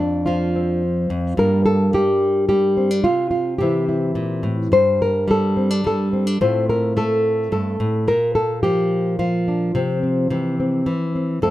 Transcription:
0.00 1.09 F2 medium
0.00 0.82 D4 medium
0.26 1.34 F3 medium
0.26 1.37 F4 medium
0.56 1.35 C4 soft
1.10 1.37 F2 medium
1.37 3.00 G2 medium
1.37 1.93 G3 soft
1.37 3.01 A#3 soft
1.37 2.77 D4 soft
1.37 1.65 A#4 loud
1.66 1.93 A4 medium
1.93 2.48 G3 medium
1.93 2.47 G4 medium
2.49 3.07 G3 medium
2.49 3.03 G4 medium
2.77 2.91 C4 soft
2.91 3.04 D4 soft
3.04 3.57 C3 medium
3.04 3.29 F4 medium
3.31 3.58 F4 medium
3.58 4.15 C3 medium
3.58 4.70 E3 soft
3.58 4.70 C4 soft
3.58 4.72 G4 medium
3.62 3.87 E4 soft
3.89 4.69 E4 soft
4.15 4.44 A#2 medium
4.43 4.71 A2 medium
4.72 6.37 G2 medium
4.72 5.01 C5 loud
5.02 5.29 A#4 medium
5.28 5.83 G3 medium
5.28 5.86 A4 medium
5.57 5.71 C4 soft
5.71 6.13 D4 soft
5.84 6.37 G3 medium
5.84 6.41 A4 medium
6.13 6.27 C4 soft
6.27 6.41 D4 soft
6.41 7.51 A2 medium
6.41 6.95 A3 soft
6.41 8.05 C4 soft
6.41 8.05 F4 soft
6.41 6.69 C5 medium
6.69 6.97 A#4 medium
6.97 8.04 A3 medium
6.97 7.51 A4 medium
7.52 7.80 G2 medium
7.52 8.08 A4 medium
7.80 8.08 A2 medium
8.08 9.74 A#2 medium
8.08 8.35 A#4 medium
8.35 8.62 A4 medium
8.63 9.18 F3 medium
8.63 9.18 G4 medium
9.19 9.71 F3 medium
9.19 10.30 F4 medium
9.48 9.71 D4 soft
9.75 10.27 C3 medium
9.75 10.27 F3 soft
9.75 10.02 C4 soft
10.03 10.27 C4 soft
10.30 10.86 C3 medium
10.30 10.85 E3 soft
10.30 10.59 C4 soft
10.60 11.14 C4 soft
10.86 11.39 E3 medium
11.15 11.40 C4 soft
11.42 11.50 F2 medium
11.42 11.50 F3 soft
11.42 11.50 A3 soft
11.42 11.50 C4 soft
11.42 11.50 A4 loud

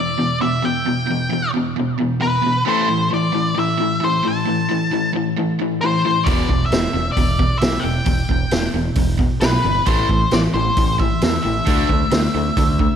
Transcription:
0.00 0.17 E2 medium
0.00 0.17 B2 medium
0.00 0.38 D5 medium
0.19 0.39 E2 medium
0.19 0.39 B2 medium
0.42 0.62 E2 medium
0.42 0.62 B2 medium
0.42 0.64 E5 medium
0.64 0.84 E2 medium
0.64 0.84 B2 medium
0.64 1.50 G5 medium
0.88 1.07 E2 medium
0.88 1.07 B2 medium
1.06 1.27 E2 medium
1.10 1.30 E2 medium
1.10 1.30 B2 medium
1.33 1.52 E2 medium
1.33 1.52 B2 medium
1.57 1.75 E2 medium
1.57 1.75 B2 medium
1.79 1.98 E2 medium
1.79 1.98 B2 medium
2.00 2.19 E2 medium
2.00 2.20 B2 medium
2.22 2.42 E2 medium
2.22 2.42 B2 medium
2.22 2.63 B4 medium
2.42 2.63 E2 medium
2.42 2.63 B2 medium
2.47 2.65 E2 medium
2.47 2.65 B2 medium
2.67 2.88 A2 medium
2.67 2.88 E3 medium
2.67 2.88 A3 medium
2.67 3.09 C5 medium
2.90 3.09 A2 medium
2.90 3.09 E3 medium
3.13 3.32 A2 medium
3.13 3.32 E3 medium
3.13 3.59 D5 medium
3.35 3.54 A2 medium
3.35 3.54 E3 medium
3.58 3.77 A2 medium
3.58 3.77 E3 medium
3.58 4.04 E5 medium
3.80 3.99 A2 medium
3.80 4.00 E3 medium
4.03 4.22 A2 medium
4.03 4.22 E3 medium
4.03 4.26 C5 medium
4.25 4.45 A2 medium
4.25 4.45 E3 medium
4.25 5.12 A5 medium
4.48 4.67 A2 medium
4.48 4.67 E3 medium
4.71 4.90 A2 medium
4.71 4.90 E3 medium
4.93 5.12 A2 medium
4.93 5.12 E3 medium
5.16 5.35 A2 medium
5.16 5.35 E3 medium
5.38 5.57 A2 medium
5.38 5.58 E3 medium
5.62 5.80 A2 medium
5.62 5.80 E3 medium
5.81 6.03 A2 medium
5.81 6.03 E3 medium
5.81 6.28 C5 medium
6.05 6.25 A2 medium
6.05 6.25 E3 medium
6.24 6.41 E1 medium
6.24 6.48 E2 medium
6.24 6.48 B2 medium
6.24 6.48 E3 loud
6.24 6.65 D5 medium
6.24 kick loud
6.24 open hi-hat soft
6.49 6.64 E1 medium
6.49 6.70 E2 medium
6.49 6.70 B2 medium
6.49 kick medium
6.66 7.10 E5 medium
6.71 6.86 E1 medium
6.71 6.92 E2 medium
6.71 6.92 B2 medium
6.71 snare loud
6.71 open hi-hat soft
6.94 7.09 E1 medium
6.94 7.14 E2 medium
6.94 7.15 B2 medium
7.12 7.56 D5 medium
7.17 7.47 E1 medium
7.17 7.37 E2 medium
7.17 7.38 B2 medium
7.17 kick loud
7.17 open hi-hat soft
7.39 7.59 E2 medium
7.39 7.59 B2 medium
7.39 kick medium
7.58 7.77 B1 medium
7.58 7.83 E5 medium
7.58 snare loud
7.58 open hi-hat medium
7.63 7.82 E2 medium
7.63 7.82 B2 medium
7.80 8.68 G5 medium
7.84 7.99 E1 medium
7.84 8.04 E2 medium
7.84 8.04 B2 medium
8.06 8.21 E1 medium
8.06 8.27 E2 medium
8.06 8.27 B2 medium
8.06 kick loud
8.06 open hi-hat soft
8.29 8.44 E1 medium
8.29 8.50 E2 medium
8.29 8.50 B2 medium
8.29 kick medium
8.51 8.67 E1 medium
8.51 8.73 E2 medium
8.51 8.73 B2 medium
8.51 snare loud
8.51 open hi-hat medium
8.74 8.89 E1 medium
8.74 8.95 E2 medium
8.74 8.95 B2 medium
8.95 9.26 E1 medium
8.95 9.18 E2 medium
8.95 9.18 B2 medium
8.95 kick loud
8.95 open hi-hat soft
9.19 9.40 E2 medium
9.19 9.40 B2 medium
9.19 kick medium
9.41 9.57 B1 medium
9.41 9.63 E2 medium
9.41 9.63 B2 medium
9.41 9.87 B4 medium
9.41 snare loud
9.41 open hi-hat soft
9.65 9.80 G1 medium
9.65 9.85 E2 medium
9.65 9.85 B2 medium
9.86 10.02 A1 medium
9.86 10.08 A2 medium
9.86 10.09 E3 loud
9.86 10.09 A3 medium
9.86 10.33 C5 medium
9.86 kick loud
9.86 open hi-hat soft
10.09 10.24 A1 medium
10.09 10.30 A2 medium
10.09 10.30 E3 medium
10.09 kick medium
10.31 10.47 A1 medium
10.31 10.52 A2 medium
10.31 10.52 E3 medium
10.31 10.39 D5 loud
10.31 snare loud
10.31 open hi-hat soft
10.54 10.69 A1 medium
10.54 10.75 A2 medium
10.54 10.75 E3 medium
10.54 10.96 C5 medium
10.77 11.07 A1 medium
10.77 10.98 A2 medium
10.77 10.98 E3 medium
10.77 kick loud
10.77 open hi-hat soft
11.00 11.20 A2 medium
11.00 11.21 E3 medium
11.00 11.41 E5 loud
11.00 kick medium
11.21 11.37 E2 medium
11.21 11.43 A2 medium
11.21 11.43 E3 medium
11.21 snare loud
11.21 open hi-hat soft
11.43 11.60 A1 medium
11.43 11.65 A2 medium
11.43 11.66 E3 medium
11.43 12.96 E5 medium
11.66 11.82 D2 medium
11.66 11.89 D3 medium
11.66 11.89 A3 medium
11.66 11.89 D4 medium
11.66 kick loud
11.66 open hi-hat soft
11.89 12.04 D2 medium
11.89 12.11 D3 medium
11.89 12.11 A3 medium
11.89 kick medium
12.11 12.27 D2 medium
12.11 12.33 D3 medium
12.11 12.33 A3 medium
12.11 snare loud
12.11 open hi-hat soft
12.35 12.49 D2 medium
12.35 12.56 D3 medium
12.35 12.56 A3 medium
12.57 12.87 D2 medium
12.57 12.78 D3 medium
12.57 12.78 A3 medium
12.57 kick loud
12.57 open hi-hat soft
12.79 12.96 D3 medium
12.79 12.96 A3 medium
12.79 kick medium

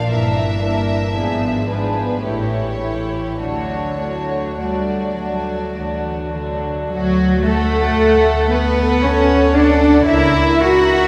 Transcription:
0.09 1.03 G1 medium
0.09 1.03 G2 soft
0.09 0.61 E3 soft
0.09 0.61 A#3 soft
0.09 0.61 D4 soft
0.09 0.61 A#4 soft
0.09 1.65 E5 medium
0.62 1.14 E3 soft
0.62 1.14 A#3 soft
0.62 1.14 D4 soft
0.62 1.14 A#4 soft
1.15 2.10 G#1 soft
1.15 2.10 G#2 soft
1.15 1.67 F3 soft
1.15 1.67 B3 soft
1.15 1.66 D4 soft
1.15 1.66 G#4 soft
1.68 2.22 F3 soft
1.68 2.22 B3 soft
1.68 2.22 D4 soft
1.68 2.22 G#4 soft
1.68 2.22 B4 medium
2.22 3.26 A1 soft
2.22 3.26 A2 soft
2.22 2.79 E3 soft
2.22 2.79 A3 soft
2.22 2.79 E4 soft
2.22 2.79 G4 soft
2.22 3.40 C#5 medium
2.80 3.39 E3 soft
2.80 3.39 A3 soft
2.80 3.39 E4 soft
2.80 3.39 G4 soft
3.40 4.45 D2 soft
3.40 4.46 D3 soft
3.40 3.99 F#3 soft
3.40 3.99 A3 soft
3.40 3.99 D4 soft
3.40 3.99 F#4 soft
3.40 4.57 C#5 medium
4.00 4.58 F#3 soft
4.00 4.58 A3 soft
4.00 4.58 D4 soft
4.00 4.58 F#4 soft
4.59 5.63 D2 soft
4.59 5.17 F#3 soft
4.59 5.14 G3 soft
4.59 5.17 A3 soft
4.59 5.17 D4 soft
4.59 5.17 F#4 soft
4.59 6.35 D5 soft
5.19 5.75 F#3 soft
5.19 5.76 F#3 soft
5.19 5.75 A3 soft
5.19 5.76 D4 soft
5.19 5.75 F#4 soft
5.76 6.78 D2 soft
5.76 6.35 E3 soft
5.76 6.34 F#3 soft
5.76 6.34 A3 soft
5.76 6.34 D4 soft
5.76 6.34 F#4 soft
6.35 6.91 D3 soft
6.35 6.90 F#3 soft
6.35 6.90 A3 soft
6.35 6.91 D4 soft
6.35 6.91 F#4 soft
6.91 7.86 D2 medium
6.91 7.41 F#3 medium
6.91 7.42 F#3 medium
6.91 7.41 F#4 medium
7.44 8.50 A3 medium
7.44 8.51 A3 medium
7.44 8.48 A4 medium
7.44 8.49 A4 medium
7.44 8.49 F#5 medium
7.98 8.90 D2 medium
8.50 9.02 B3 medium
8.50 9.03 B3 medium
8.50 9.54 A4 medium
8.50 9.03 B4 medium
8.50 9.53 F#5 medium
9.03 9.95 D2 medium
9.03 9.55 C#4 medium
9.03 9.56 C#5 medium
9.55 10.07 D4 medium
9.55 10.08 D4 medium
9.55 10.07 A4 medium
9.55 10.08 D5 medium
9.55 10.07 F#5 medium
10.07 11.00 C#2 medium
10.07 10.58 E4 medium
10.07 10.59 E4 medium
10.07 10.60 A#4 medium
10.07 10.60 E5 medium
10.60 11.08 F#4 medium
10.60 11.08 F#4 loud
10.60 11.08 A#4 medium
10.60 11.08 E5 medium
10.60 11.08 F#5 medium

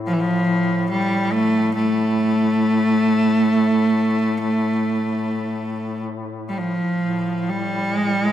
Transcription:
0.00 6.82 A2 soft
0.07 0.15 F3 medium
0.13 0.22 E3 medium
0.20 0.90 F3 medium
0.90 1.34 G3 medium
1.32 1.74 A3 medium
1.75 6.04 A3 medium
6.49 6.60 G3 soft
6.58 7.51 F3 medium
6.99 8.32 A2 soft
7.50 7.96 G3 medium
7.96 8.08 G#3 medium
8.08 8.22 G3 medium
8.22 8.32 G#3 medium

